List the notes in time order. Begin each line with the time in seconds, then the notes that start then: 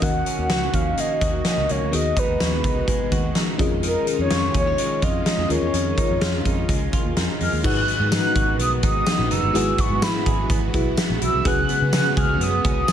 Already playing: D#3 A#3 C#4 F#4
0.01 D#2 D#3 C#4 F#4 A#4 D#5 F#5, kick, closed hi-hat
0.26 C#4, closed hi-hat
0.38 D#2 F#5
0.50 C#2 F#4, snare, closed hi-hat
0.73 D#2 C#4 F5, kick, closed hi-hat
0.97 A#3 D#5, closed hi-hat
1.21 D#2 F#4, kick, closed hi-hat
1.35 D#5
1.45 C#4, snare, closed hi-hat
1.57 C#2
1.69 C#2 A#3 C#5, closed hi-hat
1.82 D2
1.91 D#2 D#3 G#3 B3 F#4 G#4 D#5, closed hi-hat
2.16 D#4 B4, kick, closed hi-hat
2.29 D#2
2.40 D#2 F#4, snare, closed hi-hat
2.64 C#2 D#4, kick, closed hi-hat
2.88 G#3, kick, closed hi-hat
3.12 D#2 F#4, kick, closed hi-hat
3.35 D#4, snare, closed hi-hat
3.58 F2 D#3 C#4 F4 G#4 D#5, kick, closed hi-hat
3.83 D#3 A#4, closed hi-hat
4.07 D#4, closed hi-hat
4.19 F2 C#5
4.31 F2 F4, snare, closed hi-hat
4.54 D#2 C#4 C#5, kick, closed hi-hat
4.67 D#4
4.78 G#3, closed hi-hat
5.02 F2 F4 D#5, kick, closed hi-hat
5.26 D#4 D#5, snare, closed hi-hat
5.38 F2
5.49 D#2 G#3 C#4 F4 G#4 A#4 C#5, closed hi-hat
5.62 E2
5.74 F2 D#3, closed hi-hat
5.97 D#4, kick, closed hi-hat
6.10 F2
6.21 F2 F4, snare, closed hi-hat
6.45 F2 D#4, kick, closed hi-hat
6.69 C#2 G#3, kick, closed hi-hat
6.93 F4, muted fingered electric bass stroke, kick, closed hi-hat
7.05 D#2
7.17 F2 D#4, snare, closed hi-hat
7.40 F2 G#3 F6, open hi-hat
7.53 D#2
7.63 G#1 G#2 D#3 F#3 G#3 B3 D#4 F#4 G#4 B4 F#5 F#6, kick, crash
7.88 B3, closed hi-hat
8.00 G#2
8.12 D#4 F#6, snare, closed hi-hat, tambourine
8.35 G#1 F#4, kick, closed hi-hat
8.59 B1 B3 D#6, closed hi-hat
8.83 G#1 D#4 D#6, kick, closed hi-hat
9.06 B3, snare, closed hi-hat, tambourine
9.19 A#1
9.31 F#1 D#4 E6, closed hi-hat
9.43 G1
9.53 G#1 G#2 E3 F#3 E4 F#4 G#4 B4 F#5, closed hi-hat
9.78 B3 C#6, kick, closed hi-hat
9.90 G#2
10.02 E4 B5, snare, closed hi-hat, tambourine
10.26 G#1 G#4, kick, closed hi-hat
10.50 G#1 B3, kick, closed hi-hat
10.74 B1 E4 F#4 G#4 B4 F#5, kick, closed hi-hat
10.97 B3, snare, closed hi-hat, tambourine
11.10 A#1
11.21 B1 E4 E6, closed hi-hat
11.34 C2
11.45 C#3 F#3 G#3 B3 C#4 F#4 G#4 B4 F#5 F#6, kick, closed hi-hat
11.69 B3, closed hi-hat
11.82 C#3
11.93 C#4 F#6, snare, closed hi-hat, tambourine
12.17 C#2 G#4 F6, kick, closed hi-hat
12.41 F#2 B3 D#6, closed hi-hat
12.64 C#2 C#4 D#6, kick, closed hi-hat
12.88 B3, snare, closed hi-hat, tambourine